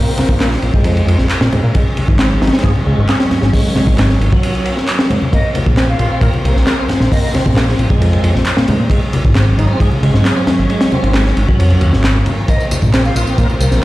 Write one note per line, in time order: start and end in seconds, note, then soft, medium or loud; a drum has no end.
0.00 1.71 F3 medium
0.00 0.17 A#3 medium
0.00 1.71 A#3 medium
0.00 1.71 C4 medium
0.17 0.39 A#3 medium
0.17 snare medium
0.17 ride medium
0.17 high conga medium
0.29 0.58 A#1 medium
0.29 kick medium
0.40 0.50 A#3 medium
0.40 snare loud
0.40 clap loud
0.40 ride medium
0.51 snare medium
0.62 0.71 A#1 loud
0.62 ride medium
0.74 1.18 G#3 medium
0.74 kick loud
0.84 1.02 F2 medium
0.84 ride medium
0.97 ride soft
1.07 1.16 F2 medium
1.07 ride medium
1.18 1.27 A#1 loud
1.18 snare soft
1.29 clap loud
1.29 ride medium
1.41 1.49 A#2 loud
1.41 snare loud
1.51 1.61 G#2 medium
1.51 ride medium
1.51 high conga medium
1.51 low conga medium
1.64 1.72 A#2 medium
1.74 5.29 F#3 medium
1.74 3.52 G#3 medium
1.74 1.84 G#3 medium
1.74 5.29 C#4 medium
1.74 kick loud
1.74 ride medium
1.97 ride medium
1.97 high conga medium
2.08 2.37 G#1 loud
2.08 kick medium
2.19 2.29 C4 medium
2.19 snare loud
2.19 clap loud
2.19 ride medium
2.41 2.50 G#1 medium
2.41 2.52 D#4 medium
2.41 snare medium
2.41 ride medium
2.47 snare medium
2.47 ride medium
2.53 2.63 C4 medium
2.53 snare medium
2.53 ride medium
2.59 snare medium
2.59 ride medium
2.64 2.72 G#2 medium
2.64 2.73 G#4 medium
2.64 kick loud
2.64 ride medium
2.76 high conga medium
2.86 2.95 C#2 loud
2.86 3.08 G#3 medium
2.98 3.06 G#1 loud
3.08 3.18 G#4 medium
3.08 snare loud
3.08 clap medium
3.08 ride medium
3.20 3.25 C4 loud
3.20 snare loud
3.20 ride medium
3.31 snare medium
3.31 ride medium
3.31 low conga medium
3.42 3.51 G#1 medium
3.42 snare medium
3.53 3.75 G#3 medium
3.53 8.86 A#3 medium
3.53 kick loud
3.53 open hi-hat medium
3.75 3.97 G#3 medium
3.75 snare medium
3.75 ride medium
3.75 high conga medium
3.75 low conga medium
3.87 4.16 G#1 medium
3.87 kick medium
3.98 4.08 G#3 medium
3.98 snare loud
3.98 clap loud
3.98 ride medium
4.09 snare soft
4.21 4.29 G#1 medium
4.21 ride medium
4.32 4.75 F#3 medium
4.32 kick loud
4.43 ride medium
4.55 ride soft
4.66 ride medium
4.77 snare soft
4.87 clap medium
4.87 ride medium
4.99 snare loud
5.10 5.19 G#2 medium
5.10 ride medium
5.10 high conga medium
5.10 low conga medium
5.22 high conga medium
5.32 8.87 F3 medium
5.32 5.42 A#3 medium
5.32 8.87 C4 medium
5.32 5.50 D#5 medium
5.32 kick loud
5.32 ride medium
5.55 ride medium
5.55 high conga medium
5.66 5.95 A#1 medium
5.66 kick medium
5.77 5.87 C4 medium
5.77 snare loud
5.77 clap loud
5.77 ride medium
5.89 5.98 F5 medium
5.99 6.08 A#1 medium
5.99 6.11 F4 medium
5.99 6.07 F5 medium
5.99 ride medium
6.11 6.21 C4 medium
6.11 6.18 F5 medium
6.21 6.30 A#2 medium
6.21 6.32 A#4 medium
6.21 kick loud
6.21 ride medium
6.34 high conga medium
6.45 6.53 C2 loud
6.45 6.66 A#3 medium
6.45 ride medium
6.56 6.64 A#1 loud
6.56 snare soft
6.67 6.77 A#4 medium
6.67 snare loud
6.67 clap loud
6.67 ride medium
6.78 6.84 C4 loud
6.89 snare medium
6.89 ride medium
6.89 low conga medium
7.00 7.09 A#1 medium
7.00 snare soft
7.11 7.33 A#3 medium
7.11 7.19 D#5 medium
7.11 kick loud
7.11 open hi-hat medium
7.23 7.30 D#5 medium
7.34 7.55 C4 medium
7.34 snare medium
7.34 ride medium
7.34 high conga medium
7.46 7.75 A#1 loud
7.46 kick loud
7.56 7.66 A#3 medium
7.56 snare loud
7.56 clap loud
7.56 ride medium
7.69 snare medium
7.79 7.87 A#1 loud
7.79 ride medium
7.90 8.34 G#3 medium
7.90 kick loud
8.01 8.18 F2 medium
8.01 ride medium
8.13 ride soft
8.24 8.32 F2 medium
8.24 ride medium
8.35 8.43 A#1 loud
8.35 snare soft
8.45 clap loud
8.45 ride medium
8.57 8.66 A#2 loud
8.57 snare loud
8.68 8.77 G#2 medium
8.68 ride medium
8.68 high conga medium
8.68 low conga medium
8.79 8.88 A#2 medium
8.90 12.45 F#3 medium
8.90 10.68 G#3 medium
8.90 9.00 G#3 medium
8.90 12.45 C#4 medium
8.90 kick loud
8.90 ride medium
9.13 ride medium
9.13 high conga medium
9.25 9.54 G#1 loud
9.25 kick loud
9.35 9.45 C4 medium
9.35 snare loud
9.35 clap loud
9.35 ride medium
9.58 9.66 G#1 loud
9.58 9.69 D#4 medium
9.58 ride medium
9.70 9.80 C4 medium
9.80 9.89 G#2 medium
9.80 9.90 G#4 medium
9.80 kick loud
9.80 ride medium
9.91 high conga medium
10.03 10.11 C#2 medium
10.03 10.24 G#3 medium
10.03 ride medium
10.14 10.22 G#1 loud
10.14 snare soft
10.25 10.35 G#4 medium
10.25 snare loud
10.25 clap loud
10.25 ride medium
10.37 10.42 C4 loud
10.47 snare loud
10.47 ride medium
10.47 low conga medium
10.59 10.67 G#1 medium
10.70 10.91 G#3 medium
10.70 13.84 A#3 medium
10.70 ride medium
10.81 snare loud
10.81 ride medium
10.92 11.14 C4 medium
10.92 high conga medium
11.03 11.32 G#1 loud
11.03 ride medium
11.14 11.24 G#3 medium
11.14 snare loud
11.14 clap loud
11.14 ride medium
11.26 snare soft
11.37 11.46 G#1 medium
11.37 ride medium
11.48 11.92 F#3 medium
11.48 kick medium
11.59 11.76 F2 medium
11.59 ride medium
11.70 ride soft
11.81 11.94 D#2 medium
11.81 ride medium
11.93 12.22 G#1 medium
11.93 snare soft
12.04 snare loud
12.04 clap loud
12.04 ride medium
12.26 ride medium
12.26 high conga medium
12.26 low conga medium
12.48 13.84 F3 medium
12.48 12.58 A#3 medium
12.48 13.84 C4 medium
12.48 12.66 D#5 medium
12.48 kick loud
12.48 ride medium
12.48 tambourine soft
12.60 tambourine soft
12.71 ride medium
12.71 tambourine medium
12.71 high conga medium
12.82 13.12 A#1 loud
12.82 kick medium
12.82 tambourine soft
12.93 13.03 C4 medium
12.93 snare loud
12.93 clap loud
12.93 ride medium
12.93 tambourine soft
13.05 13.14 F5 medium
13.05 tambourine soft
13.16 13.24 A#1 loud
13.16 13.27 F4 medium
13.16 ride medium
13.16 tambourine medium
13.27 13.38 C4 medium
13.27 tambourine soft
13.38 13.47 A#2 medium
13.38 13.48 A#4 medium
13.38 kick loud
13.38 ride medium
13.38 tambourine soft
13.49 tambourine soft
13.49 high conga medium
13.60 13.69 C2 medium
13.60 13.82 A#3 medium
13.60 ride medium
13.60 tambourine medium
13.71 13.80 A#1 loud
13.71 snare soft
13.71 tambourine soft